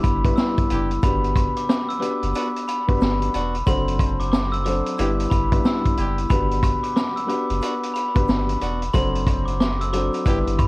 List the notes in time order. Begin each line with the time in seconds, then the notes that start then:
Already playing: G2 B3 D4 E4 G4 B4
0.03 G1 B5, kick, closed hi-hat, shaker
0.24 G2 B3 D4 E4 G4 B4, kick, closed hi-hat, high woodblock
0.36 E6, snare, shaker
0.58 kick, closed hi-hat
0.69 F#1 D4 E4 G4, closed hi-hat, shaker
0.91 closed hi-hat
1.02 G1 B3 D4 F#4 G4 B4 B5, kick, closed hi-hat, shaker
1.24 closed hi-hat
1.36 kick, closed hi-hat, high woodblock, shaker
1.56 D6, closed hi-hat
1.69 D6, snare, shaker
1.89 E6, closed hi-hat
1.99 B3 D4 F#4 G4 B4 D6, closed hi-hat, shaker
2.23 F#1, closed hi-hat
2.35 B3 D4 F#4, closed hi-hat, shaker
2.56 closed hi-hat
2.68 B5, closed hi-hat, shaker
2.87 G1 B3 D4 F#4 G4 B4, kick, closed hi-hat, high woodblock
3.01 G1, snare, shaker
3.22 closed hi-hat
3.34 E1 B3 D4 F#4, closed hi-hat, shaker
3.54 closed hi-hat
3.66 F#1 F#3 C4 D4 F#4 A4 C5 C6, kick, closed hi-hat, shaker
3.88 closed hi-hat
3.99 kick, closed hi-hat, high woodblock, shaker
4.20 D6, closed hi-hat
4.32 D6, snare, shaker
4.52 E6, closed hi-hat
4.65 F#3 C4 D4 F#4 A4 C5 D6, closed hi-hat, shaker
4.86 closed hi-hat
4.98 G1 G2 B3 D4 E4 G4 B4, closed hi-hat, shaker
5.20 closed hi-hat
5.30 G1 B5, kick, closed hi-hat, shaker
5.51 G2 B3 D4 E4 G4 B4, kick, closed hi-hat, high woodblock
5.64 E6, snare, shaker
5.85 kick, closed hi-hat
5.97 F#1 D4 E4 G4, closed hi-hat, shaker
6.18 closed hi-hat
6.30 G1 B3 D4 F#4 G4 B4 B5, kick, closed hi-hat, shaker
6.51 closed hi-hat
6.63 kick, closed hi-hat, high woodblock, shaker
6.83 D6, closed hi-hat
6.96 D6, snare, shaker
7.16 E6, closed hi-hat
7.27 B3 D4 F#4 G4 B4 D6, closed hi-hat, shaker
7.50 F#1, closed hi-hat
7.62 B3 D4 F#4, closed hi-hat, shaker
7.83 closed hi-hat
7.94 B5, closed hi-hat, shaker
8.15 G1 B3 D4 F#4 G4 B4, kick, closed hi-hat, high woodblock
8.28 G1, snare, shaker
8.49 closed hi-hat
8.61 E1 B3 D4 F#4, closed hi-hat, shaker
8.82 closed hi-hat
8.93 F#1 F#3 C4 D4 F#4 A4 C5 C6, kick, closed hi-hat, shaker
9.15 closed hi-hat
9.27 kick, closed hi-hat, high woodblock, shaker
9.46 D6, closed hi-hat
9.60 D6, snare, shaker
9.81 E6, closed hi-hat
9.93 F#3 C4 D4 F#4 A4 C5 D6, closed hi-hat, shaker
10.14 closed hi-hat
10.25 G1 G2 B3 D4 E4 G4 B4, kick, closed hi-hat, shaker
10.47 G1, closed hi-hat
10.59 G2 B5, kick, closed hi-hat, high woodblock, shaker